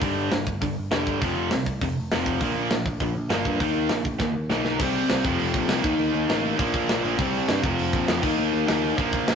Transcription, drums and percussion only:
0.02 kick medium
0.02 open hi-hat medium
0.31 snare loud
0.31 open hi-hat soft
0.47 kick medium
0.62 kick medium
0.62 open hi-hat medium
0.91 snare loud
0.91 open hi-hat medium
1.07 kick medium
1.22 kick medium
1.22 open hi-hat soft
1.51 snare loud
1.51 open hi-hat medium
1.66 kick medium
1.81 kick medium
1.81 open hi-hat medium
2.11 snare loud
2.11 open hi-hat medium
2.26 kick medium
2.41 kick medium
2.41 open hi-hat medium
2.71 snare loud
2.71 open hi-hat medium
2.86 kick medium
3.00 kick medium
3.00 open hi-hat medium
3.30 snare loud
3.30 open hi-hat medium
3.45 kick medium
3.60 kick medium
3.60 open hi-hat medium
3.89 snare loud
3.89 open hi-hat medium
4.05 kick medium
4.19 kick medium
4.19 snare medium
4.50 snare medium
4.65 snare medium
4.80 kick loud
4.80 crash loud
4.80 crash medium
4.94 crash medium
5.10 snare loud
5.10 crash medium
5.25 kick loud
5.25 crash medium
5.39 crash medium
5.54 kick medium
5.54 crash medium
5.69 snare loud
5.69 crash medium
5.84 kick loud
5.84 crash medium
5.99 crash medium
6.14 crash medium
6.30 snare loud
6.30 crash medium
6.44 crash medium
6.59 kick loud
6.59 crash medium
6.74 kick medium
6.74 crash medium
6.89 snare loud
6.89 crash medium
7.05 crash medium
7.19 kick loud
7.19 crash medium
7.34 crash medium
7.48 snare loud
7.48 crash medium
7.64 kick loud
7.64 crash medium
7.79 crash loud
7.93 kick medium
7.93 crash medium
8.08 snare loud
8.08 crash medium
8.23 kick loud
8.23 crash loud
8.39 crash medium
8.53 crash medium
8.68 snare loud
8.68 crash medium
8.84 crash medium
8.98 kick loud
8.98 crash medium
9.13 kick medium
9.13 crash medium
9.28 snare loud
9.28 crash medium

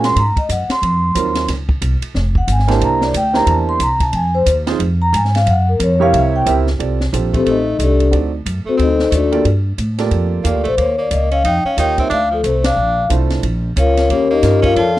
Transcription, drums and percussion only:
0.04 snare medium
0.04 ride medium
0.16 kick soft
0.16 ride medium
0.36 kick medium
0.36 ride soft
0.49 kick soft
0.49 hi-hat pedal medium
0.49 ride medium
0.70 snare medium
0.70 ride soft
0.82 kick soft
0.82 ride medium
1.15 kick soft
1.15 hi-hat pedal medium
1.15 ride medium
1.35 snare medium
1.35 ride medium
1.48 kick soft
1.48 snare soft
1.48 ride medium
1.69 kick medium
1.82 kick soft
1.82 hi-hat pedal medium
1.82 ride medium
2.02 ride medium
2.15 kick soft
2.15 snare soft
2.35 kick medium
2.48 kick soft
2.48 hi-hat pedal medium
2.48 ride medium
2.59 snare soft
2.68 snare medium
2.68 ride soft
2.81 kick soft
2.81 ride medium
3.01 snare medium
3.14 kick soft
3.14 hi-hat pedal medium
3.14 ride medium
3.34 snare medium
3.47 kick soft
3.47 ride medium
3.80 kick soft
3.80 hi-hat pedal medium
3.80 ride medium
4.00 kick medium
4.00 ride medium
4.13 kick soft
4.13 ride medium
4.46 kick soft
4.46 hi-hat pedal medium
4.46 ride medium
4.67 snare medium
4.67 ride soft
4.80 kick soft
4.80 ride medium
5.13 kick soft
5.13 hi-hat pedal medium
5.13 ride medium
5.25 snare soft
5.35 snare soft
5.35 ride medium
5.47 kick soft
5.47 ride medium
5.80 kick soft
5.80 hi-hat pedal medium
5.80 ride medium
6.13 kick soft
6.13 ride medium
6.46 kick soft
6.46 hi-hat pedal medium
6.46 ride medium
6.67 snare soft
6.80 kick soft
6.80 ride medium
7.01 snare soft
7.13 kick soft
7.13 hi-hat pedal medium
7.13 ride medium
7.34 kick soft
7.34 ride soft
7.46 kick soft
7.46 ride medium
7.79 kick soft
7.79 hi-hat pedal medium
7.79 ride medium
8.00 ride soft
8.12 kick soft
8.12 ride medium
8.46 kick soft
8.46 hi-hat pedal soft
8.46 ride medium
8.79 kick soft
8.79 ride medium
8.99 snare soft
9.12 kick soft
9.12 hi-hat pedal medium
9.12 ride medium
9.32 ride soft
9.45 kick soft
9.45 ride medium
9.78 kick soft
9.78 hi-hat pedal medium
9.78 ride medium
9.98 snare soft
9.98 ride soft
10.11 kick soft
10.11 ride medium
10.45 kick soft
10.45 hi-hat pedal medium
10.45 ride medium
10.65 ride soft
10.78 kick soft
10.78 ride medium
11.11 kick soft
11.11 hi-hat pedal medium
11.11 ride medium
11.31 ride soft
11.44 kick soft
11.44 ride medium
11.77 kick soft
11.77 hi-hat pedal medium
11.77 ride medium
11.98 kick soft
11.98 ride soft
12.11 kick soft
12.11 ride medium
12.44 kick soft
12.44 hi-hat pedal medium
12.44 ride medium
12.64 snare medium
12.64 ride medium
13.10 kick soft
13.10 hi-hat pedal medium
13.10 ride medium
13.30 snare soft
13.30 ride soft
13.43 kick soft
13.43 ride medium
13.76 kick soft
13.76 hi-hat pedal medium
13.76 ride medium
13.97 snare soft
13.97 ride soft
14.10 kick soft
14.10 ride medium
14.43 kick soft
14.43 snare soft
14.43 hi-hat pedal medium
14.43 ride medium
14.63 kick medium
14.63 ride soft
14.76 kick soft
14.76 ride medium

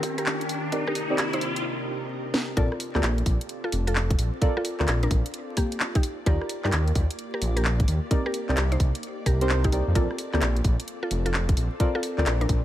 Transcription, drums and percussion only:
0.03 kick loud
0.03 open hi-hat loud
0.18 closed hi-hat medium
0.26 clap loud
0.41 closed hi-hat soft
0.49 open hi-hat medium
0.72 kick loud
0.72 closed hi-hat medium
0.87 cross-stick medium
0.95 open hi-hat loud
1.18 clap loud
1.18 closed hi-hat medium
1.33 closed hi-hat soft
1.41 open hi-hat medium
1.56 closed hi-hat medium
2.34 snare loud
2.57 kick loud
2.57 closed hi-hat medium
2.72 cross-stick medium
2.80 open hi-hat loud
2.95 clap medium
3.03 clap loud
3.03 closed hi-hat medium
3.18 closed hi-hat soft
3.26 kick loud
3.26 open hi-hat loud
3.41 closed hi-hat medium
3.49 closed hi-hat medium
3.72 open hi-hat loud
3.87 closed hi-hat medium
3.95 clap loud
4.10 kick loud
4.10 closed hi-hat medium
4.19 open hi-hat loud
4.42 kick loud
4.42 closed hi-hat medium
4.57 cross-stick medium
4.65 open hi-hat loud
4.80 clap medium
4.88 clap loud
4.88 closed hi-hat medium
5.03 closed hi-hat soft
5.11 kick loud
5.11 open hi-hat medium
5.26 closed hi-hat medium
5.34 closed hi-hat medium
5.57 kick medium
5.57 open hi-hat loud
5.72 closed hi-hat medium
5.80 clap loud
5.95 kick loud
5.95 closed hi-hat soft
6.03 open hi-hat medium
6.26 kick loud
6.26 closed hi-hat medium
6.41 cross-stick medium
6.49 open hi-hat loud
6.65 clap medium
6.72 clap loud
6.72 closed hi-hat medium
6.88 closed hi-hat soft
6.95 kick loud
6.95 open hi-hat medium
7.11 closed hi-hat medium
7.19 closed hi-hat medium
7.42 open hi-hat loud
7.57 closed hi-hat medium
7.65 clap loud
7.80 kick loud
7.80 closed hi-hat soft
7.88 open hi-hat medium
8.11 kick loud
8.11 closed hi-hat medium
8.26 cross-stick medium
8.34 open hi-hat loud
8.49 clap medium
8.57 clap loud
8.57 closed hi-hat medium
8.72 closed hi-hat soft
8.80 kick loud
8.80 open hi-hat medium
8.95 closed hi-hat medium
9.03 closed hi-hat medium
9.26 kick medium
9.26 open hi-hat loud
9.41 closed hi-hat medium
9.49 clap loud
9.64 kick loud
9.64 closed hi-hat medium
9.72 open hi-hat medium
9.95 kick loud
9.95 closed hi-hat medium
10.11 cross-stick medium
10.18 open hi-hat loud
10.34 clap medium
10.42 clap loud
10.42 closed hi-hat medium
10.57 closed hi-hat soft
10.65 kick loud
10.65 open hi-hat medium
10.80 closed hi-hat medium
10.88 closed hi-hat medium
11.11 open hi-hat loud
11.26 closed hi-hat medium
11.34 clap loud
11.49 kick loud
11.49 closed hi-hat medium
11.57 open hi-hat medium
11.80 kick loud
11.80 closed hi-hat medium
11.95 cross-stick medium
12.03 open hi-hat loud
12.18 clap medium
12.26 clap loud
12.26 closed hi-hat medium
12.41 closed hi-hat soft
12.49 kick loud
12.49 open hi-hat medium

